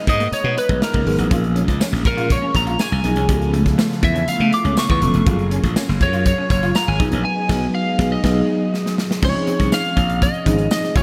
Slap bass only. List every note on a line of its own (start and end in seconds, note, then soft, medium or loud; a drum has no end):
0.07 0.28 G#2 medium
0.32 muted slap bass stroke medium
0.44 0.55 B2 medium
0.69 0.80 B1 medium
0.94 1.05 C#2 medium
1.06 1.17 G#1 medium
1.18 1.29 A1 medium
1.31 1.62 A#1 loud
1.68 1.79 C#2 medium
1.93 2.03 A#1 medium
2.05 2.36 A#2 medium
2.55 2.75 A#1 medium
2.92 3.02 C2 medium
3.04 3.17 B1 medium
3.17 3.27 C2 medium
3.29 3.50 C#2 loud
3.53 3.74 C#2 loud
4.03 4.24 E2 loud
4.28 muted slap bass stroke medium
4.40 4.50 C#3 loud
4.65 4.75 C#2 medium
4.90 5.00 E2 medium
5.02 5.12 E1 medium
5.14 5.25 F1 medium
5.27 5.58 F#1 medium
5.64 5.74 A#1 medium
5.89 6.02 F#1 loud
6.01 6.32 F#2 loud
6.50 6.71 F#1 medium
6.88 6.98 G#1 loud
7.00 7.10 B1 loud
7.12 7.23 A#1 medium
7.50 7.66 B1 loud
7.99 8.16 B1 loud
8.24 8.41 B1 loud
9.23 9.33 C#2 loud
9.60 9.70 C2 medium
9.97 10.28 A#1 medium
10.46 10.67 G#1 medium
10.96 11.03 F#1 medium